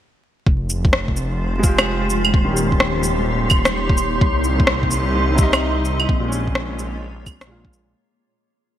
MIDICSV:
0, 0, Header, 1, 6, 480
1, 0, Start_track
1, 0, Key_signature, -4, "minor"
1, 0, Tempo, 468750
1, 474, Time_signature, 4, 2, 24, 8
1, 8995, End_track
2, 0, Start_track
2, 0, Title_t, "Synth texture"
2, 0, Program_c, 0, 99
2, 472, Note_on_c, 0, 84, 92
2, 8165, Note_off_c, 0, 84, 0
2, 8995, End_track
3, 0, Start_track
3, 0, Title_t, "Ambient pad"
3, 0, Program_c, 1, 92
3, 475, Note_on_c, 1, 56, 77
3, 476, Note_on_c, 1, 72, 85
3, 480, Note_on_c, 1, 65, 66
3, 480, Note_on_c, 1, 67, 73
3, 2375, Note_off_c, 1, 56, 0
3, 2376, Note_off_c, 1, 72, 0
3, 2377, Note_on_c, 1, 58, 77
3, 2378, Note_off_c, 1, 65, 0
3, 2381, Note_on_c, 1, 63, 72
3, 2381, Note_on_c, 1, 73, 86
3, 4279, Note_off_c, 1, 67, 0
3, 4286, Note_off_c, 1, 58, 0
3, 4289, Note_off_c, 1, 73, 0
3, 4320, Note_on_c, 1, 75, 85
3, 4323, Note_on_c, 1, 60, 75
3, 4323, Note_on_c, 1, 67, 73
3, 6189, Note_off_c, 1, 63, 0
3, 6218, Note_off_c, 1, 75, 0
3, 6219, Note_off_c, 1, 67, 0
3, 6220, Note_off_c, 1, 60, 0
3, 6241, Note_on_c, 1, 68, 68
3, 6241, Note_on_c, 1, 73, 89
3, 6243, Note_on_c, 1, 65, 71
3, 6245, Note_on_c, 1, 58, 81
3, 8138, Note_off_c, 1, 68, 0
3, 8139, Note_off_c, 1, 65, 0
3, 8139, Note_off_c, 1, 73, 0
3, 8141, Note_off_c, 1, 58, 0
3, 8995, End_track
4, 0, Start_track
4, 0, Title_t, "Upright piano"
4, 0, Program_c, 2, 0
4, 1631, Note_on_c, 2, 56, 95
4, 1671, Note_on_c, 2, 65, 92
4, 1715, Note_on_c, 2, 67, 104
4, 2362, Note_off_c, 2, 56, 0
4, 2382, Note_off_c, 2, 65, 0
4, 2404, Note_off_c, 2, 67, 0
4, 2506, Note_on_c, 2, 51, 82
4, 2548, Note_on_c, 2, 61, 72
4, 2588, Note_on_c, 2, 67, 86
4, 4283, Note_off_c, 2, 51, 0
4, 4304, Note_off_c, 2, 61, 0
4, 4324, Note_off_c, 2, 67, 0
4, 5475, Note_on_c, 2, 48, 99
4, 5518, Note_on_c, 2, 55, 93
4, 5557, Note_on_c, 2, 63, 112
4, 6204, Note_off_c, 2, 48, 0
4, 6226, Note_off_c, 2, 55, 0
4, 6245, Note_off_c, 2, 63, 0
4, 6349, Note_on_c, 2, 46, 82
4, 6395, Note_on_c, 2, 56, 75
4, 6435, Note_on_c, 2, 61, 92
4, 7636, Note_off_c, 2, 46, 0
4, 7652, Note_on_c, 2, 46, 82
4, 7657, Note_off_c, 2, 56, 0
4, 7672, Note_on_c, 2, 56, 75
4, 7680, Note_off_c, 2, 61, 0
4, 7693, Note_on_c, 2, 65, 90
4, 7779, Note_off_c, 2, 46, 0
4, 7790, Note_off_c, 2, 56, 0
4, 7800, Note_off_c, 2, 65, 0
4, 7801, Note_on_c, 2, 46, 76
4, 7825, Note_on_c, 2, 56, 72
4, 7845, Note_on_c, 2, 65, 83
4, 8130, Note_off_c, 2, 46, 0
4, 8143, Note_off_c, 2, 56, 0
4, 8153, Note_off_c, 2, 65, 0
4, 8995, End_track
5, 0, Start_track
5, 0, Title_t, "Detuned saw bass"
5, 0, Program_c, 3, 39
5, 478, Note_on_c, 3, 29, 87
5, 2379, Note_off_c, 3, 29, 0
5, 2396, Note_on_c, 3, 27, 85
5, 4298, Note_off_c, 3, 27, 0
5, 4316, Note_on_c, 3, 36, 90
5, 6218, Note_off_c, 3, 36, 0
5, 6237, Note_on_c, 3, 34, 94
5, 8139, Note_off_c, 3, 34, 0
5, 8995, End_track
6, 0, Start_track
6, 0, Title_t, "Drums"
6, 476, Note_on_c, 9, 36, 110
6, 579, Note_off_c, 9, 36, 0
6, 713, Note_on_c, 9, 82, 54
6, 816, Note_off_c, 9, 82, 0
6, 868, Note_on_c, 9, 36, 96
6, 952, Note_on_c, 9, 37, 108
6, 971, Note_off_c, 9, 36, 0
6, 1054, Note_off_c, 9, 37, 0
6, 1109, Note_on_c, 9, 36, 57
6, 1194, Note_on_c, 9, 82, 54
6, 1211, Note_off_c, 9, 36, 0
6, 1296, Note_off_c, 9, 82, 0
6, 1672, Note_on_c, 9, 82, 55
6, 1675, Note_on_c, 9, 36, 107
6, 1774, Note_off_c, 9, 82, 0
6, 1777, Note_off_c, 9, 36, 0
6, 1827, Note_on_c, 9, 37, 101
6, 1827, Note_on_c, 9, 75, 58
6, 1827, Note_on_c, 9, 82, 30
6, 1929, Note_off_c, 9, 37, 0
6, 1929, Note_off_c, 9, 75, 0
6, 1929, Note_off_c, 9, 82, 0
6, 2149, Note_on_c, 9, 82, 55
6, 2251, Note_off_c, 9, 82, 0
6, 2300, Note_on_c, 9, 75, 65
6, 2394, Note_on_c, 9, 36, 117
6, 2402, Note_off_c, 9, 75, 0
6, 2497, Note_off_c, 9, 36, 0
6, 2629, Note_on_c, 9, 82, 52
6, 2731, Note_off_c, 9, 82, 0
6, 2787, Note_on_c, 9, 36, 61
6, 2869, Note_on_c, 9, 37, 105
6, 2890, Note_off_c, 9, 36, 0
6, 2971, Note_off_c, 9, 37, 0
6, 3106, Note_on_c, 9, 82, 56
6, 3208, Note_off_c, 9, 82, 0
6, 3583, Note_on_c, 9, 75, 61
6, 3583, Note_on_c, 9, 82, 55
6, 3594, Note_on_c, 9, 36, 109
6, 3685, Note_off_c, 9, 75, 0
6, 3685, Note_off_c, 9, 82, 0
6, 3696, Note_off_c, 9, 36, 0
6, 3740, Note_on_c, 9, 37, 99
6, 3740, Note_on_c, 9, 82, 29
6, 3843, Note_off_c, 9, 37, 0
6, 3843, Note_off_c, 9, 82, 0
6, 3988, Note_on_c, 9, 36, 105
6, 4070, Note_on_c, 9, 82, 50
6, 4090, Note_off_c, 9, 36, 0
6, 4172, Note_off_c, 9, 82, 0
6, 4315, Note_on_c, 9, 36, 124
6, 4417, Note_off_c, 9, 36, 0
6, 4548, Note_on_c, 9, 82, 51
6, 4650, Note_off_c, 9, 82, 0
6, 4708, Note_on_c, 9, 36, 108
6, 4783, Note_on_c, 9, 37, 110
6, 4811, Note_off_c, 9, 36, 0
6, 4886, Note_off_c, 9, 37, 0
6, 4947, Note_on_c, 9, 36, 59
6, 5026, Note_on_c, 9, 82, 53
6, 5050, Note_off_c, 9, 36, 0
6, 5128, Note_off_c, 9, 82, 0
6, 5508, Note_on_c, 9, 82, 57
6, 5515, Note_on_c, 9, 36, 116
6, 5610, Note_off_c, 9, 82, 0
6, 5617, Note_off_c, 9, 36, 0
6, 5664, Note_on_c, 9, 37, 98
6, 5664, Note_on_c, 9, 75, 55
6, 5664, Note_on_c, 9, 82, 30
6, 5766, Note_off_c, 9, 37, 0
6, 5766, Note_off_c, 9, 75, 0
6, 5766, Note_off_c, 9, 82, 0
6, 5990, Note_on_c, 9, 82, 52
6, 6093, Note_off_c, 9, 82, 0
6, 6141, Note_on_c, 9, 75, 61
6, 6236, Note_on_c, 9, 36, 126
6, 6243, Note_off_c, 9, 75, 0
6, 6338, Note_off_c, 9, 36, 0
6, 6475, Note_on_c, 9, 82, 51
6, 6577, Note_off_c, 9, 82, 0
6, 6630, Note_on_c, 9, 36, 58
6, 6710, Note_on_c, 9, 37, 107
6, 6733, Note_off_c, 9, 36, 0
6, 6812, Note_off_c, 9, 37, 0
6, 6952, Note_on_c, 9, 82, 52
6, 7055, Note_off_c, 9, 82, 0
6, 7438, Note_on_c, 9, 36, 112
6, 7438, Note_on_c, 9, 75, 58
6, 7438, Note_on_c, 9, 82, 52
6, 7540, Note_off_c, 9, 36, 0
6, 7540, Note_off_c, 9, 75, 0
6, 7540, Note_off_c, 9, 82, 0
6, 7590, Note_on_c, 9, 37, 105
6, 7590, Note_on_c, 9, 82, 28
6, 7693, Note_off_c, 9, 37, 0
6, 7693, Note_off_c, 9, 82, 0
6, 7830, Note_on_c, 9, 36, 110
6, 7917, Note_on_c, 9, 82, 52
6, 7933, Note_off_c, 9, 36, 0
6, 8020, Note_off_c, 9, 82, 0
6, 8995, End_track
0, 0, End_of_file